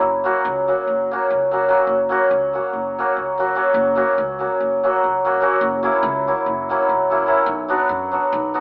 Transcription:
0.00 upright bass F#1
0.24 hammered dulcimer F#3 A#3 C#4 F#4
0.45 upright bass C#2
0.68 hammered dulcimer F#3 A#3 C#4 F#4
0.87 upright bass F#1
1.11 hammered dulcimer F#3 A#3 C#4 F#4
1.30 upright bass C#2
1.51 hammered dulcimer F#3 A#3 C#4 F#4
1.68 hammered dulcimer F#3 A#3 C#4 F#4
1.87 upright bass F#1
2.09 hammered dulcimer F#3 A#3 C#4 F#4
2.31 upright bass C#2
2.53 hammered dulcimer F#3 A#3 C#4 F#4
2.73 upright bass F#1
2.99 hammered dulcimer F#3 A#3 C#4 F#4
3.17 upright bass C#2
3.38 hammered dulcimer F#3 A#3 C#4 F#4
3.55 hammered dulcimer F#3 A#3 C#4 F#4
3.74 upright bass F#1
3.95 hammered dulcimer F#3 A#3 C#4 F#4
4.18 upright bass C#2
4.39 hammered dulcimer F#3 A#3 C#4 F#4
4.60 upright bass F#1
4.83 hammered dulcimer F#3 A#3 C#4 F#4
5.04 upright bass C#2
5.25 hammered dulcimer F#3 A#3 C#4 F#4
5.41 hammered dulcimer F#3 A#3 C#4 F#4
5.61 upright bass F#1
5.83 hammered dulcimer F#3 A#3 C#4 E4
6.03 upright bass C#2
6.27 hammered dulcimer F#3 A#3 C#4 E4
6.46 upright bass F#1
6.69 hammered dulcimer F#3 A#3 C#4 E4
6.89 upright bass C#2
7.10 hammered dulcimer F#3 A#3 C#4 E4
7.26 hammered dulcimer F#3 A#3 C#4 E4
7.46 upright bass B1
7.68 hammered dulcimer F#3 B3 D4 F#4
7.89 upright bass F#2
8.12 hammered dulcimer F#3 B3 D4 F#4
8.33 upright bass B1
8.54 hammered dulcimer F#3 B3 D4 F#4

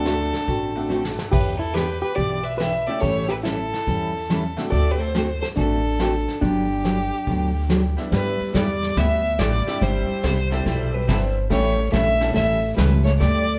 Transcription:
Already playing: upright bass D2, honky-tonk piano A3 C4 D4 F#4, hollow-body jazz guitar D4, fiddle A4
0.05 steel-string acoustic guitar D3 A3 C4 F#4 A4, snare, hi-hat pedal
0.34 snare
0.47 upright bass A1, steel-string acoustic guitar D3 A3 C4 F#4 A4, brush sweep, kick
0.75 honky-tonk piano A3 C4 D4 F#4
0.89 steel-string acoustic guitar D3 A3 C4 F#4 A4, hi-hat pedal
1.05 snare
1.19 snare
1.31 upright bass E2, steel-string acoustic guitar E3 B3 D4 G4, hollow-body jazz guitar G4, fiddle B4, brush sweep, kick, crash
1.59 hollow-body jazz guitar E4, fiddle A4
1.74 steel-string acoustic guitar E3 B3 D4 G4, hollow-body jazz guitar G4, fiddle B4, snare, hi-hat pedal
2.02 hollow-body jazz guitar G4, fiddle B4
2.16 upright bass B1, steel-string acoustic guitar E3 B3 D4 G4, hollow-body jazz guitar G4, fiddle D5, brush sweep, kick
2.43 hollow-body jazz guitar B4, fiddle E5
2.58 steel-string acoustic guitar E3 B3 D4 G4, hollow-body jazz guitar B4, fiddle E5, snare, hi-hat pedal
2.87 honky-tonk piano A3 C#4 E4 G4, hollow-body jazz guitar A4, fiddle D5
3.00 upright bass A1, steel-string acoustic guitar E3 G3 C#4 E4 A4, hollow-body jazz guitar A4, fiddle C#5, brush sweep, kick
3.29 hollow-body jazz guitar G4, fiddle B4
3.43 steel-string acoustic guitar E3 G3 C#4 E4 A4, hollow-body jazz guitar E4, fiddle A4, snare, hi-hat pedal
3.74 snare
3.87 upright bass E2, steel-string acoustic guitar E3 G3 C#4 E4 A4, brush sweep, kick
4.30 steel-string acoustic guitar E3 G3 C#4 E4 A4, snare, hi-hat pedal
4.57 honky-tonk piano A3 C4 D4 F#4, snare
4.70 upright bass D2, steel-string acoustic guitar D3 A3 C4 F#4 A4, hollow-body jazz guitar A4, fiddle D5, brush sweep, kick
4.91 hollow-body jazz guitar G4, fiddle B4
4.99 hollow-body jazz guitar A4, fiddle C5
5.15 steel-string acoustic guitar D3 A3 C4 F#4 A4, snare, hi-hat pedal
5.41 hollow-body jazz guitar A4, fiddle C5, snare
5.56 upright bass A1, steel-string acoustic guitar D3 A3 C4 F#4 A4, hollow-body jazz guitar D4, fiddle A4, brush sweep, kick
5.99 steel-string acoustic guitar D3 A3 C4 F#4 A4, snare, hi-hat pedal
6.28 snare
6.41 upright bass G1, steel-string acoustic guitar D3 F#3 B3 D4 G4, hollow-body jazz guitar D4, fiddle G4, brush sweep, kick
6.84 steel-string acoustic guitar D3 F#3 B3 D4 G4, snare, hi-hat pedal
7.27 upright bass D2, steel-string acoustic guitar D3 F#3 B3 D4 G4, brush sweep, kick
7.69 steel-string acoustic guitar D3 F#3 B3 D4 G4, snare, hi-hat pedal
7.97 honky-tonk piano G3 B3 D4 E4, snare
8.11 upright bass G2, steel-string acoustic guitar G3 B3 E4 G4, hollow-body jazz guitar G3, fiddle B4, brush sweep, kick, snare
8.41 muted upright bass stroke
8.53 upright bass E2, steel-string acoustic guitar G3 B3 E4 G4, hollow-body jazz guitar G3, fiddle D5, kick, snare, hi-hat pedal
8.83 snare
8.96 upright bass D2, steel-string acoustic guitar G3 B3 E4 G4, hollow-body jazz guitar B3, fiddle E5, brush sweep, kick, snare
9.39 upright bass A1, hollow-body jazz guitar G3, steel-string acoustic guitar G3 B3 E4 G4, fiddle D5, kick, snare, hi-hat pedal
9.67 honky-tonk piano G3 C4 D4 E4 G4, muted upright bass stroke, snare
9.81 upright bass G1, steel-string acoustic guitar C3 G3 B3 E4 G4, hollow-body jazz guitar G3, fiddle C5, brush sweep, kick, snare
10.10 muted upright bass stroke
10.24 upright bass C2, steel-string acoustic guitar C3 G3 B3 E4 G4, kick, snare, hi-hat pedal
10.50 honky-tonk piano G3 C4 E4 G4, electric slide guitar A4, snare
10.66 upright bass B1, steel-string acoustic guitar C3 G3 B3 E4 G4, brush sweep, kick, snare
10.94 electric slide guitar B4
11.07 upright bass G1, steel-string acoustic guitar C3 G3 B3 E4 G4, honky-tonk piano G3 B3 C4 E4 A4, electric slide guitar C5, kick, snare, hi-hat pedal
11.50 upright bass A1, steel-string acoustic guitar E3 G3 C#4 E4 A4, honky-tonk piano G3 A3 C#4 E4 G4, hollow-body jazz guitar A3, fiddle C#5, brush sweep, kick, snare
11.92 upright bass A#1, steel-string acoustic guitar E3 G3 C#4 E4 A4, hollow-body jazz guitar A3, fiddle E5, kick, snare, hi-hat pedal
12.21 honky-tonk piano G3 A3 C#4 E4 A4, snare
12.34 upright bass A1, steel-string acoustic guitar E3 G3 C#4 E4 A4, hollow-body jazz guitar A3, fiddle E5, brush sweep, kick, snare
12.76 upright bass C#2, steel-string acoustic guitar E3 G3 C#4 E4 A4, hollow-body jazz guitar G3, fiddle B4, kick, snare, hi-hat pedal
13.04 hollow-body jazz guitar A3, fiddle C#5, snare
13.18 upright bass D2, steel-string acoustic guitar D3 G3 C4 D4 G4, hollow-body jazz guitar A3, fiddle D5, brush sweep, kick, snare

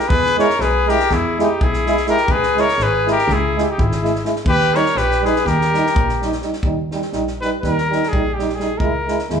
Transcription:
Already playing: trumpet G4
0.08 double bass E2, trumpet G#4 B4, kick
0.26 snare
0.37 euphonium G#3, trombone E4, trumpet A#4 C#5, snare
0.50 snare
0.60 double bass B1, trumpet G#4 B4, snare
0.87 euphonium G#3, trombone E4, trumpet G4 A#4, snare
1.00 snare
1.10 double bass E2, trumpet E4 G#4, kick, snare
1.39 euphonium G#3, trumpet D#4 G4, trombone E4, snare
1.61 double bass B1, trumpet E4 G#4, kick
1.73 snare
1.86 euphonium G#3, trombone E4, snare
1.97 snare
2.06 euphonium G#3, trombone E4, trumpet A#4, snare
2.11 trumpet G4
2.17 snare
2.28 double bass C#2, trumpet G#4 B4, kick
2.43 snare
2.56 euphonium G#3, trombone E4, trumpet C#5, snare
2.61 trumpet A#4
2.68 snare
2.78 double bass G#1, snare
2.83 trumpet G#4 B4
3.06 euphonium G#3, trombone E4, snare
3.10 trumpet G4 A#4
3.18 snare
3.28 double bass C#2, kick, snare
3.32 trumpet E4 G#4
3.56 euphonium G#3, trombone E4, snare
3.62 trumpet E4 G4 G#4
3.70 trumpet D#4 G4
3.78 double bass G#1, trumpet E4 G#4, kick
3.91 snare
4.03 euphonium G#3, trombone E4, snare
4.15 snare
4.25 euphonium G#3, trombone E4, snare
4.36 snare
4.45 double bass D#2, trumpet G4 B4, kick
4.61 snare
4.74 euphonium G3, trombone D#4, trumpet A#4 C#5, snare
4.86 snare
4.95 double bass A#1, trumpet G4 B4, snare
5.11 snare
5.22 euphonium G3, trombone D#4, trumpet G#4, snare
5.26 trumpet B4
5.36 snare
5.45 double bass D#2, trumpet G4 A#4, kick, snare
5.61 snare
5.73 euphonium G3, trombone D#4, snare
5.86 snare
5.96 double bass A#1, kick
6.09 snare
6.22 euphonium G3, trombone D#4, snare
6.32 snare
6.42 euphonium G3, trombone D#4, snare
6.53 snare
6.63 double bass D#2, euphonium G3, trombone D#4, kick
6.91 euphonium G3, trombone D#4, snare
7.02 snare
7.12 double bass A#1, euphonium G3, trombone D#4, snare
7.27 snare
7.41 euphonium G3, trombone D#4, trumpet B4, snare
7.61 double bass D#2, euphonium G3, trombone D#4, trumpet A#4, kick, snare
7.78 snare
7.90 euphonium G3, trombone D#4, snare
8.03 snare
8.09 euphonium G3, trumpet G#4
8.13 double bass A#1, trombone D#4, kick
8.34 euphonium G3, trumpet G4
8.39 trombone D#4, snare
8.49 snare
8.55 euphonium G3, trumpet G#4
8.60 trombone D#4, snare
8.78 double bass C#2, euphonium G#3, trumpet A#4, kick
8.82 trombone E4
9.07 euphonium G#3, trombone E4, snare
9.19 snare
9.28 double bass D#2, euphonium G#3, trombone E4, snare

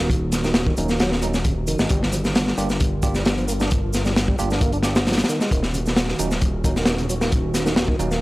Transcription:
Already playing: analog synth bass D#1, ambient pad D#3 C#4 F#4
0.10 kick, closed hi-hat, shaker
0.32 snare, closed hi-hat, shaker
0.44 tonewheel organ D#3, snare, shaker
0.54 snare, closed hi-hat, shaker
0.67 tonewheel organ D#3, kick
0.77 analog synth bass D#1, tine electric piano F#3 A#3 C#4 D#4, closed hi-hat, shaker
0.89 tonewheel organ A#3, snare, shaker
1.00 tonewheel organ F#3, snare, closed hi-hat, shaker
1.12 tonewheel organ A#3, snare
1.22 tine electric piano F#3 A#3 C#4 D#4, tonewheel organ D#4, closed hi-hat, shaker
1.34 tonewheel organ C#4, snare, shaker
1.44 tonewheel organ C#3, kick, closed hi-hat, shaker
1.67 analog synth bass F#1, tonewheel organ D#3, closed hi-hat, shaker
1.79 analog synth bass G#1, tonewheel organ G#3, snare, shaker
1.89 analog synth bass G1, tonewheel organ G3, ambient pad G3 F4 A#4, kick, closed hi-hat, shaker
2.03 snare
2.12 tonewheel organ F3, closed hi-hat, shaker
2.24 snare, shaker
2.35 snare, closed hi-hat, shaker
2.47 snare
2.58 analog synth bass G1, tine electric piano A#3 D4 F4 G4, closed hi-hat, shaker
2.69 snare, shaker
2.80 kick, closed hi-hat, shaker
3.03 tonewheel organ G3, tine electric piano A#3 D4 F4 G4, kick, closed hi-hat, shaker
3.15 tonewheel organ G3, snare, shaker
3.25 tonewheel organ G3, snare, closed hi-hat, shaker
3.37 tonewheel organ F3, closed hi-hat
3.48 tonewheel organ A#3, closed hi-hat, shaker
3.60 tonewheel organ D4, snare, shaker
3.71 kick, closed hi-hat, shaker
3.93 snare, closed hi-hat, shaker
4.05 tonewheel organ G3, snare, shaker
4.16 snare, closed hi-hat, shaker
4.28 tonewheel organ G3, kick
4.39 analog synth bass G1, tine electric piano A#3 D4 F4 G4, closed hi-hat, shaker
4.50 tonewheel organ D4, snare, shaker
4.61 tonewheel organ A#3, kick, closed hi-hat, shaker
4.72 tonewheel organ D4, closed hi-hat
4.83 tine electric piano A#3 D4 F4 G4, tonewheel organ G4, snare, closed hi-hat, shaker
4.95 tonewheel organ F4, snare, shaker
5.06 tonewheel organ F3, snare, closed hi-hat, shaker
5.12 snare, closed hi-hat
5.18 snare, closed hi-hat
5.24 snare, closed hi-hat
5.29 tonewheel organ D#3, ambient pad D#3 C#4 F#4, closed hi-hat, shaker
5.41 tonewheel organ G#3, snare, shaker
5.51 analog synth bass D#1, tonewheel organ D#3, kick, closed hi-hat, shaker
5.63 snare
5.74 tonewheel organ C#3, closed hi-hat, shaker
5.86 snare, shaker
5.96 snare, closed hi-hat, shaker
6.09 snare
6.19 analog synth bass D#1, tine electric piano F#3 A#3 C#4 D#4, closed hi-hat, shaker
6.31 snare, shaker
6.41 kick, closed hi-hat, shaker
6.64 tonewheel organ D#3, tine electric piano F#3 A#3 C#4 D#4, kick, closed hi-hat, shaker
6.76 tonewheel organ D#3, snare, shaker
6.86 tonewheel organ D#3, snare, closed hi-hat, shaker
6.98 tonewheel organ C#3, closed hi-hat
7.09 tonewheel organ F#3, closed hi-hat, shaker
7.21 tonewheel organ A#3, snare, shaker
7.32 kick, closed hi-hat, shaker
7.54 snare, closed hi-hat, shaker
7.66 tonewheel organ D#3, snare, shaker
7.76 snare, closed hi-hat, shaker
7.88 tonewheel organ D#3, kick
7.99 analog synth bass D#1, tine electric piano F#3 A#3 C#4 D#4, closed hi-hat, shaker
8.11 tonewheel organ A#3, snare, shaker

